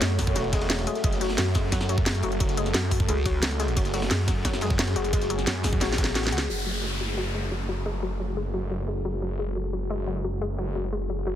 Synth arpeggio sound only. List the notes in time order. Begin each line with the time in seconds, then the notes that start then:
0.02 G#3
0.19 F#3
0.36 F#3
0.53 G#3
0.70 G#3
0.87 G#3
1.04 G#3
1.21 F#3
1.38 F#3
1.55 G#3
1.72 F#3
1.89 F#3
2.06 G#3
2.23 F#3
2.40 F#3
2.57 G#3
2.74 F#3
2.91 F#3
3.08 G#3
3.26 F#3
3.43 F#3
3.60 G#3
3.77 F#3
3.94 F#3
4.11 G#3
4.28 F#3
4.45 F#3
4.62 G#3
4.79 F#3
4.96 F#3
5.13 G#3
5.30 F#3
5.47 F#3
5.64 G#3
5.81 F#3
5.98 F#3
6.15 F#4
6.32 F#4
6.49 F#3
6.66 F#3
6.84 G#3
7.01 F#3
7.18 F#3
7.35 G#3
7.52 F#3
7.69 F#3
7.86 G#3
8.03 F#3
8.20 F#3
8.37 G#3
8.54 F#3
8.71 F#3
8.88 G#3
9.05 F#3
9.22 F#3
9.39 G#3
9.56 F#3
9.73 F#3
9.90 G#3
10.07 F#3
10.24 F#3
10.41 G#3
10.58 F#3
10.76 F#3
10.93 G#3
11.10 F#3
11.27 F#3